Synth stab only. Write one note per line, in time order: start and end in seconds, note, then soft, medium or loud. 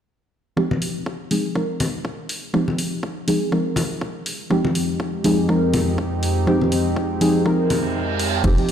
0.56 1.28 F3 medium
0.56 1.28 G#3 medium
0.56 1.28 C4 medium
0.56 1.29 D#4 medium
0.56 1.29 G4 loud
1.31 1.53 F3 medium
1.31 1.53 G#3 medium
1.31 1.53 C4 medium
1.31 1.53 D#4 medium
1.31 1.53 G#4 medium
1.55 2.51 F3 medium
1.55 2.51 G#3 medium
1.55 2.51 C4 medium
1.55 2.52 D#4 medium
1.55 2.52 A#4 medium
2.53 3.25 F3 medium
2.53 3.25 G#3 medium
2.53 3.25 C4 medium
2.53 3.25 D#4 medium
2.53 3.26 G4 loud
3.27 3.50 F3 medium
3.27 3.50 G#3 medium
3.27 3.50 C4 medium
3.27 3.50 D#4 medium
3.27 3.50 G#4 medium
3.52 4.48 F3 medium
3.52 4.48 G#3 medium
3.52 4.48 C4 medium
3.52 4.48 D#4 medium
3.52 4.48 A#4 medium
4.50 5.22 F3 medium
4.50 5.22 G#3 medium
4.50 5.22 C4 medium
4.50 5.22 D#4 medium
4.50 5.22 G4 loud
5.24 5.46 F3 medium
5.24 5.46 G#3 medium
5.24 5.47 C4 medium
5.24 5.47 D#4 medium
5.24 5.47 G#4 medium
5.48 6.45 F3 medium
5.48 6.45 G#3 medium
5.48 6.45 C4 medium
5.48 6.45 D#4 medium
5.48 6.45 A#4 medium
6.47 7.18 F3 medium
6.47 7.18 G#3 medium
6.47 7.19 C4 medium
6.47 7.19 D#4 medium
6.47 7.19 G4 loud
7.21 7.43 F3 medium
7.21 7.43 G#3 medium
7.21 7.43 C4 medium
7.21 7.43 D#4 medium
7.21 7.43 G#4 medium
7.45 8.41 F3 medium
7.45 8.41 G#3 medium
7.45 8.42 C4 medium
7.45 8.42 D#4 medium
7.45 8.42 A#4 medium
8.43 8.72 F3 medium
8.43 8.72 G#3 medium
8.43 8.72 C4 medium
8.43 8.72 D#4 medium
8.43 8.72 G4 loud